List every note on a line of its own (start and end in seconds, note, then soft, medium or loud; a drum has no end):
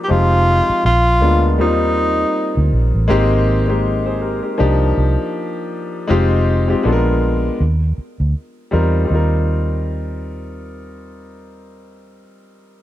0.00 0.08 F3 medium
0.00 0.11 A#3 medium
0.00 0.11 D4 medium
0.00 0.10 D#4 medium
0.00 0.11 G4 medium
0.00 0.12 G4 medium
0.08 0.60 F1 loud
0.08 0.77 F3 medium
0.08 0.77 G#3 medium
0.08 0.77 C4 medium
0.08 0.77 D#4 medium
0.08 0.85 F4 loud
0.08 0.78 G4 medium
0.69 muted fingered electric bass stroke soft
0.85 1.23 A#1 loud
0.85 1.56 F4 loud
1.21 1.60 D2 medium
1.21 1.59 G#3 medium
1.21 1.57 A#3 medium
1.21 1.59 B3 medium
1.21 1.60 D4 medium
1.21 1.59 F4 medium
1.58 2.23 D#2 medium
1.58 2.94 G3 medium
1.58 2.95 A#3 medium
1.58 2.95 C4 medium
1.58 2.95 D#4 medium
1.58 2.69 D#4 medium
1.58 2.96 F4 medium
2.57 2.70 D2 medium
2.73 2.91 A#1 medium
2.94 3.07 A1 medium
3.08 4.40 G#1 loud
3.08 3.60 G#3 loud
3.08 3.61 A#3 loud
3.08 3.61 C4 loud
3.08 3.61 D#4 loud
3.08 3.62 G4 loud
3.67 4.58 G#3 medium
3.67 4.57 A#3 medium
3.67 4.59 C4 medium
3.67 3.85 D#4 medium
3.67 3.85 G4 medium
4.06 4.21 G#4 medium
4.06 4.21 C5 medium
4.22 4.41 G4 medium
4.22 4.42 A#4 medium
4.43 4.58 D#4 medium
4.43 4.59 G4 medium
4.58 4.92 C2 loud
4.58 5.94 F3 medium
4.58 5.95 A#3 medium
4.58 5.95 D4 medium
4.58 5.95 D#4 medium
4.58 5.96 G4 loud
4.97 5.16 C2 medium
6.07 6.74 F1 loud
6.07 6.60 G#3 loud
6.07 6.61 C4 loud
6.07 6.61 D#4 loud
6.07 6.61 F4 loud
6.07 6.62 G4 loud
6.68 6.82 G#3 medium
6.68 6.84 C4 medium
6.68 6.85 D#4 medium
6.68 6.84 F4 medium
6.68 6.85 G4 medium
6.83 7.49 A#1 medium
6.83 7.52 G#3 loud
6.83 7.52 B3 medium
6.83 7.52 D4 medium
6.83 7.53 F4 medium
6.83 6.92 A4 medium
6.92 7.56 A#4 loud
7.60 7.92 D#2 medium
7.98 muted fingered electric bass stroke soft
8.20 8.33 D2 medium
8.71 9.04 E2 medium
8.71 9.03 G3 medium
8.71 9.06 C4 medium
8.71 9.06 D#4 medium
8.71 9.07 F4 medium
8.71 9.07 A#4 medium
9.05 12.19 G3 medium
9.05 12.22 C4 medium
9.10 12.26 D#2 medium
9.10 12.25 D#4 medium
9.10 12.27 F4 medium
9.15 12.30 A#4 medium